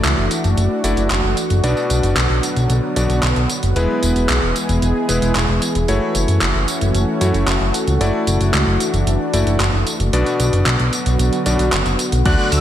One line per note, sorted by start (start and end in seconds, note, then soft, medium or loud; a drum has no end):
0.00 1.60 E3 medium
0.00 0.81 A3 medium
0.00 1.60 A3 medium
0.00 1.62 D4 medium
0.00 0.81 E4 medium
0.00 0.81 F#4 medium
0.00 3.72 F#4 medium
0.00 0.81 D5 loud
0.04 0.15 C#2 loud
0.04 clap loud
0.04 closed hi-hat medium
0.04 tambourine soft
0.18 0.29 F#1 medium
0.31 closed hi-hat medium
0.31 tambourine medium
0.44 0.55 F#1 medium
0.44 closed hi-hat soft
0.44 tambourine soft
0.57 0.68 F#1 loud
0.57 closed hi-hat medium
0.57 tambourine soft
0.84 0.95 F#1 loud
0.84 1.07 A3 medium
0.84 1.07 E4 medium
0.84 1.07 F#4 medium
0.84 1.07 D5 medium
0.84 closed hi-hat medium
0.84 tambourine medium
0.97 1.08 F#1 medium
0.97 closed hi-hat soft
0.97 tambourine soft
1.10 1.22 F#1 loud
1.10 clap loud
1.10 closed hi-hat medium
1.10 tambourine soft
1.24 1.35 F#1 medium
1.37 closed hi-hat medium
1.37 tambourine medium
1.50 1.61 F#1 medium
1.50 closed hi-hat soft
1.50 tambourine soft
1.64 1.75 B1 loud
1.64 2.93 B2 medium
1.64 3.74 D3 medium
1.64 3.74 F#3 medium
1.64 2.93 B3 medium
1.64 5.85 B3 medium
1.64 2.93 D4 medium
1.64 2.93 F#4 medium
1.64 2.93 D5 loud
1.64 closed hi-hat medium
1.64 tambourine soft
1.77 tambourine soft
1.90 2.01 B1 medium
1.90 closed hi-hat medium
1.90 tambourine medium
2.03 2.15 F#1 medium
2.03 closed hi-hat soft
2.03 tambourine soft
2.17 2.28 B1 loud
2.17 clap loud
2.17 closed hi-hat medium
2.17 tambourine soft
2.30 2.41 B1 medium
2.43 closed hi-hat medium
2.43 tambourine medium
2.57 2.68 B1 medium
2.57 closed hi-hat soft
2.57 tambourine soft
2.70 2.81 B1 loud
2.70 closed hi-hat medium
2.70 tambourine soft
2.96 3.07 B1 medium
2.96 3.19 B2 medium
2.96 3.19 B3 medium
2.96 3.19 D4 medium
2.96 3.19 F#4 medium
2.96 3.19 D5 medium
2.96 closed hi-hat medium
2.96 tambourine medium
3.10 3.21 B1 medium
3.10 closed hi-hat soft
3.10 tambourine soft
3.23 3.34 B1 loud
3.23 clap loud
3.23 closed hi-hat medium
3.23 tambourine soft
3.36 3.47 B1 medium
3.36 closed hi-hat soft
3.49 closed hi-hat medium
3.49 tambourine medium
3.63 3.74 F#1 medium
3.63 closed hi-hat soft
3.63 tambourine soft
3.76 3.87 E1 loud
3.76 7.97 E3 medium
3.76 5.06 G#3 medium
3.76 5.86 G#3 medium
3.76 5.06 B3 medium
3.76 5.06 E4 medium
3.76 5.87 G#4 medium
3.76 5.06 B4 medium
3.76 closed hi-hat medium
3.76 tambourine soft
4.03 4.14 E1 medium
4.03 closed hi-hat medium
4.03 tambourine medium
4.16 4.27 E1 medium
4.16 closed hi-hat soft
4.16 tambourine soft
4.29 4.40 B1 loud
4.29 clap loud
4.29 closed hi-hat medium
4.29 tambourine soft
4.43 4.54 E1 medium
4.56 closed hi-hat medium
4.56 tambourine medium
4.69 4.80 E1 medium
4.69 closed hi-hat soft
4.69 tambourine soft
4.82 4.93 E1 medium
4.82 closed hi-hat medium
4.82 tambourine soft
5.09 5.20 E1 medium
5.09 5.31 G#3 medium
5.09 5.31 B3 medium
5.09 5.31 E4 medium
5.09 5.31 B4 medium
5.09 closed hi-hat medium
5.09 tambourine medium
5.22 5.33 E1 medium
5.22 closed hi-hat soft
5.22 tambourine soft
5.35 5.46 E1 medium
5.35 clap loud
5.35 closed hi-hat medium
5.35 tambourine soft
5.49 5.60 E1 medium
5.62 closed hi-hat medium
5.62 tambourine medium
5.75 5.86 E1 medium
5.75 closed hi-hat soft
5.75 tambourine soft
5.88 5.99 F#1 loud
5.88 10.09 A3 medium
5.88 7.18 A3 medium
5.88 7.99 C#4 medium
5.88 7.18 E4 medium
5.88 10.09 F#4 medium
5.88 7.18 F#4 medium
5.88 7.18 C#5 loud
5.88 closed hi-hat medium
5.88 tambourine soft
6.15 6.26 F#1 medium
6.15 closed hi-hat medium
6.15 tambourine medium
6.28 6.39 F#2 medium
6.28 closed hi-hat soft
6.28 tambourine soft
6.41 6.53 F#1 loud
6.41 clap loud
6.41 closed hi-hat medium
6.41 tambourine soft
6.55 6.66 F#1 medium
6.68 closed hi-hat medium
6.68 tambourine medium
6.81 6.92 F#1 medium
6.81 closed hi-hat soft
6.81 tambourine soft
6.95 7.06 F#1 loud
6.95 closed hi-hat medium
6.95 tambourine soft
7.21 7.32 F#2 loud
7.21 7.44 A3 medium
7.21 7.44 E4 medium
7.21 7.44 F#4 medium
7.21 7.44 C#5 medium
7.21 closed hi-hat medium
7.21 tambourine medium
7.34 7.45 F#1 medium
7.34 closed hi-hat soft
7.34 tambourine soft
7.48 7.59 F#1 loud
7.48 clap loud
7.48 closed hi-hat medium
7.48 tambourine soft
7.61 7.72 F#1 medium
7.74 closed hi-hat medium
7.74 tambourine medium
7.87 7.98 C#2 medium
7.87 closed hi-hat soft
7.87 tambourine soft
8.01 8.12 F#1 medium
8.01 10.11 E3 medium
8.01 9.30 A3 medium
8.01 10.11 D4 medium
8.01 9.30 E4 medium
8.01 9.30 F#4 medium
8.01 9.30 D5 loud
8.01 closed hi-hat medium
8.01 tambourine soft
8.27 8.38 F#1 medium
8.27 closed hi-hat medium
8.27 tambourine medium
8.41 8.52 F#1 medium
8.41 closed hi-hat soft
8.41 tambourine soft
8.54 8.65 C#2 loud
8.54 clap loud
8.54 closed hi-hat medium
8.54 tambourine soft
8.67 8.78 F#1 medium
8.80 closed hi-hat medium
8.80 tambourine medium
8.94 9.05 F#1 medium
8.94 closed hi-hat soft
8.94 tambourine soft
9.07 9.18 F#1 loud
9.07 closed hi-hat medium
9.07 tambourine soft
9.34 9.44 F#1 medium
9.34 9.56 A3 medium
9.34 9.56 E4 medium
9.34 9.56 F#4 medium
9.34 9.56 D5 medium
9.34 closed hi-hat medium
9.34 tambourine medium
9.47 9.58 F#1 medium
9.47 closed hi-hat medium
9.47 tambourine soft
9.60 9.71 F#1 loud
9.60 clap loud
9.60 closed hi-hat medium
9.60 tambourine soft
9.73 9.84 F#1 medium
9.87 closed hi-hat medium
9.87 tambourine medium
10.00 10.11 F#1 medium
10.00 closed hi-hat medium
10.00 tambourine soft
10.13 10.24 B1 loud
10.13 11.43 B2 medium
10.13 12.24 D3 medium
10.13 12.24 F#3 medium
10.13 11.43 B3 medium
10.13 12.24 B3 medium
10.13 11.43 D4 medium
10.13 12.24 F#4 medium
10.13 11.43 F#4 medium
10.13 11.43 D5 loud
10.13 closed hi-hat medium
10.13 tambourine soft
10.26 closed hi-hat soft
10.26 tambourine soft
10.40 10.51 B1 medium
10.40 closed hi-hat medium
10.40 tambourine medium
10.53 10.64 F#1 medium
10.53 closed hi-hat medium
10.53 tambourine soft
10.66 10.77 B1 medium
10.66 clap loud
10.66 closed hi-hat medium
10.66 tambourine soft
10.79 10.91 B1 medium
10.79 closed hi-hat soft
10.93 closed hi-hat medium
10.93 tambourine medium
11.06 11.17 B1 medium
11.06 closed hi-hat medium
11.06 tambourine soft
11.19 11.30 B1 loud
11.19 closed hi-hat medium
11.19 tambourine soft
11.33 closed hi-hat soft
11.33 tambourine soft
11.46 11.57 B1 loud
11.46 11.69 B2 medium
11.46 11.69 B3 medium
11.46 11.69 D4 medium
11.46 11.69 F#4 medium
11.46 11.69 D5 medium
11.46 closed hi-hat medium
11.46 tambourine medium
11.59 11.70 B1 medium
11.59 closed hi-hat medium
11.59 tambourine soft
11.72 11.83 F#1 loud
11.72 clap loud
11.72 closed hi-hat medium
11.72 tambourine soft
11.86 11.97 F#1 medium
11.86 closed hi-hat soft
11.86 tambourine soft
11.99 closed hi-hat medium
11.99 tambourine medium
12.12 12.23 B1 medium
12.12 closed hi-hat medium
12.12 tambourine soft
12.25 12.36 D2 loud
12.25 12.61 D3 medium
12.25 12.61 F#3 medium
12.25 12.61 A3 medium
12.25 12.61 D4 medium
12.25 12.61 F#4 medium
12.25 12.61 A4 medium
12.25 12.61 D5 loud
12.25 12.54 F#6 loud
12.25 kick loud
12.25 closed hi-hat medium
12.25 crash loud
12.25 tambourine soft
12.39 tambourine soft
12.52 12.61 D2 loud
12.52 12.61 E6 loud
12.52 open hi-hat loud
12.52 tambourine medium